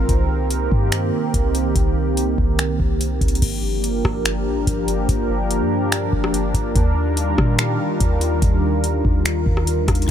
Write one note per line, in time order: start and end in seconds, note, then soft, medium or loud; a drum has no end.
0.00 3.38 C4 medium
0.00 3.38 A#4 medium
0.09 0.69 C2 loud
0.09 3.39 D#3 medium
0.09 3.39 A#3 medium
0.09 3.39 G4 medium
0.09 kick loud
0.09 closed hi-hat medium
0.51 closed hi-hat medium
0.72 1.11 G2 loud
0.72 kick medium
0.92 finger snap loud
0.92 closed hi-hat medium
1.34 1.74 C2 loud
1.34 kick medium
1.34 closed hi-hat medium
1.55 closed hi-hat medium
1.76 2.36 C2 loud
1.76 kick loud
1.76 closed hi-hat medium
2.17 closed hi-hat medium
2.38 2.78 C2 loud
2.38 kick medium
2.59 finger snap loud
2.59 closed hi-hat medium
2.80 3.20 C2 loud
2.80 kick medium
3.01 closed hi-hat medium
3.21 3.41 C2 loud
3.21 kick medium
3.21 closed hi-hat medium
3.28 closed hi-hat medium
3.35 closed hi-hat medium
3.42 4.02 G1 loud
3.42 6.72 F3 medium
3.42 6.72 A#3 medium
3.42 10.05 D4 medium
3.42 6.72 G4 medium
3.42 6.72 A#4 medium
3.42 kick loud
3.42 closed hi-hat medium
3.42 crash loud
3.84 closed hi-hat medium
4.05 4.48 G1 loud
4.05 kick loud
4.05 cross-stick loud
4.25 finger snap loud
4.25 closed hi-hat medium
4.46 4.58 A#1 loud
4.57 4.67 G1 loud
4.67 5.07 G1 loud
4.67 kick medium
4.67 closed hi-hat medium
4.88 closed hi-hat medium
5.09 5.62 G1 loud
5.09 kick loud
5.09 closed hi-hat medium
5.51 closed hi-hat medium
5.61 6.10 G2 loud
5.92 finger snap loud
5.92 closed hi-hat medium
6.13 6.53 G1 loud
6.13 kick medium
6.24 cross-stick loud
6.34 closed hi-hat medium
6.54 6.75 G1 loud
6.54 kick loud
6.54 closed hi-hat medium
6.75 7.35 D#2 loud
6.75 10.11 D#3 medium
6.75 10.05 G3 medium
6.75 10.11 F4 medium
6.75 10.11 A#4 medium
6.75 kick loud
6.75 closed hi-hat medium
7.17 closed hi-hat medium
7.38 7.78 A#2 loud
7.38 kick loud
7.38 cross-stick loud
7.59 finger snap loud
7.59 closed hi-hat medium
8.00 8.40 D#2 loud
8.00 kick loud
8.00 closed hi-hat medium
8.21 closed hi-hat medium
8.42 9.02 D#2 loud
8.42 kick loud
8.42 closed hi-hat medium
8.84 closed hi-hat medium
9.05 9.45 D#2 loud
9.05 kick loud
9.25 finger snap loud
9.25 closed hi-hat medium
9.46 9.86 D#2 loud
9.46 kick medium
9.57 cross-stick medium
9.67 closed hi-hat medium
9.88 10.08 D#2 loud
9.88 kick loud
9.88 cross-stick loud
9.88 closed hi-hat medium
9.95 closed hi-hat medium
10.02 closed hi-hat medium